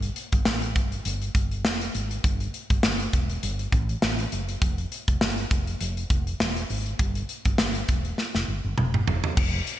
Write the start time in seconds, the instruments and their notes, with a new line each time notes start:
0.03 closed hi-hat
0.16 closed hi-hat
0.32 fretless electric bass G1, kick, closed hi-hat
0.45 fretless electric bass A1, snare
0.62 closed hi-hat
0.75 fretless electric bass G1, kick, closed hi-hat
0.92 closed hi-hat
1.05 fretless electric bass G1, closed hi-hat
1.22 closed hi-hat
1.35 fretless electric bass G1, kick, closed hi-hat
1.51 closed hi-hat
1.65 fretless electric bass F1, snare
1.81 closed hi-hat
1.95 fretless electric bass G#1, closed hi-hat
2.11 closed hi-hat
2.24 fretless electric bass G1, kick, closed hi-hat
2.40 closed hi-hat
2.54 closed hi-hat
2.70 fretless electric bass G1, kick, closed hi-hat
2.83 fretless electric bass G1, snare
3.00 closed hi-hat
3.13 fretless electric bass E1, kick, closed hi-hat
3.30 closed hi-hat
3.43 fretless electric bass G1, closed hi-hat
3.59 closed hi-hat
3.72 fretless electric bass A1, kick, closed hi-hat
3.89 closed hi-hat
4.02 fretless electric bass A1, snare
4.19 closed hi-hat
4.32 fretless electric bass F#1, closed hi-hat
4.49 closed hi-hat
4.62 fretless electric bass F1, kick, closed hi-hat
4.78 closed hi-hat
4.92 closed hi-hat
5.08 fretless electric bass F1, kick, closed hi-hat
5.21 fretless electric bass G1, snare
5.38 closed hi-hat
5.51 fretless electric bass F1, kick, closed hi-hat
5.67 closed hi-hat
5.81 fretless electric bass F1, closed hi-hat
5.97 closed hi-hat
6.10 fretless electric bass F1, kick, closed hi-hat
6.27 closed hi-hat
6.40 fretless electric bass E1, snare
6.57 closed hi-hat
6.70 fretless electric bass G#1, open hi-hat
6.86 closed hi-hat
6.99 fretless electric bass G1, kick, closed hi-hat
7.15 closed hi-hat
7.29 closed hi-hat
7.45 fretless electric bass G1, kick, closed hi-hat
7.58 fretless electric bass G1, snare
7.75 closed hi-hat
7.88 fretless electric bass E1, kick, closed hi-hat
8.05 closed hi-hat
8.18 snare
8.34 fretless electric bass F1, snare
8.48 fretless electric bass G1
8.64 fretless electric bass G1
8.78 fretless electric bass F1, mid tom
8.94 mid tom
9.07 fretless electric bass F#1, floor tom
9.24 floor tom
9.37 fretless electric bass F1, kick, crash
9.67 closed hi-hat